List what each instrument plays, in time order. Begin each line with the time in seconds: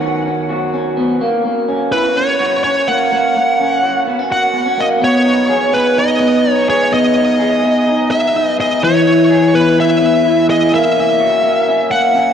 Already playing: clean electric guitar D#3 B3 C#4
0.01 clean electric guitar F#4
0.25 clean electric guitar C#4
0.49 clean electric guitar F#4
0.74 clean electric guitar C#4
0.97 clean electric guitar B3
1.21 clean electric guitar A#3
1.45 clean electric guitar A#3
1.68 clean electric guitar C#4
1.92 clean electric guitar E4, lead electric guitar B4
2.04 clean electric guitar F#4
2.16 clean electric guitar C#4, lead electric guitar C#5
2.40 clean electric guitar F#4
2.64 clean electric guitar C#4, lead electric guitar C#5
2.88 clean electric guitar A#3, lead electric guitar F#5
3.12 clean electric guitar A#3
3.36 clean electric guitar A#3
3.60 clean electric guitar C#4
3.83 clean electric guitar F#4
4.07 clean electric guitar B3
4.19 clean electric guitar C#4
4.30 clean electric guitar F#4, lead electric guitar F#5
4.53 clean electric guitar B3
4.66 clean electric guitar C#4
4.77 clean electric guitar A#3, lead electric guitar D#5
5.01 clean electric guitar B3, lead electric guitar C#5
5.25 clean electric guitar D#4
5.49 clean electric guitar G#4
5.73 clean electric guitar B3, lead electric guitar B4
5.97 clean electric guitar D#4, lead electric guitar D#5
6.20 clean electric guitar B3
6.44 clean electric guitar D#4
6.52 lead electric guitar C#5
6.68 clean electric guitar G#4, lead electric guitar C#5
6.92 clean electric guitar B3, lead electric guitar D#5
7.16 clean electric guitar D#4
7.39 clean electric guitar G#4
7.63 clean electric guitar B3
7.87 clean electric guitar D#4
8.11 clean electric guitar B3, lead electric guitar E5
8.34 clean electric guitar D#4
8.44 lead electric guitar D#5
8.58 clean electric guitar G#4, lead electric guitar D#5
8.82 clean electric guitar E3, lead electric guitar C#5
9.06 clean electric guitar E4
9.30 clean electric guitar G#4
9.53 clean electric guitar B3, lead electric guitar B4
9.78 clean electric guitar E4, lead electric guitar E5
10.01 clean electric guitar B3
10.25 clean electric guitar E4
10.49 clean electric guitar G#4, lead electric guitar D#5
10.72 clean electric guitar A#3, lead electric guitar E5
10.96 clean electric guitar C#4
11.20 clean electric guitar F#4
11.43 clean electric guitar A#3
11.67 clean electric guitar C#4
11.91 clean electric guitar A#3, lead electric guitar F#5
12.14 clean electric guitar C#4